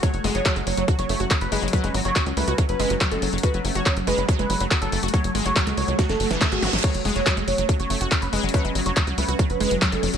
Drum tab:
CC |--------------------------------|--------------------------------|--------------------------------|--------------------------------|
HH |x-x-o-x-x-x-o-x-x-x-o-x-x-x-o-xx|x-x-o-x-x-x-o-x-x-x-o-x-x-x-o-xx|x-x-o-x-x-x-o-x-x-x-o-x-x-x-o-xx|x-x-o-x-x-x-o-x-x-x-o-x-x-x-o-xx|
CP |--------x---------------x-------|--------x---------------x-------|--------x---------------x-------|--------x---------------x-------|
SD |--------------------------------|--------------------------------|--------------------------------|----------------o-o---o-o---o-o-|
BD |o-------o-------o-------o-------|o-------o-------o-------o-------|o-------o-------o-------o-------|o-------o-------o-------o-------|

CC |x-------------------------------|--------------------------------|
HH |x-x-o-x-x-x-o-x-x-x-o-x-x-x-o-xx|x-x-o-x-x-x-o-x-x-x-o-x-x-x-o-x-|
CP |--------x---------------x-------|--------x---------------x-------|
SD |--------------------------------|--------------------------------|
BD |o-------o-------o-------o-------|o-------o-------o-------o-------|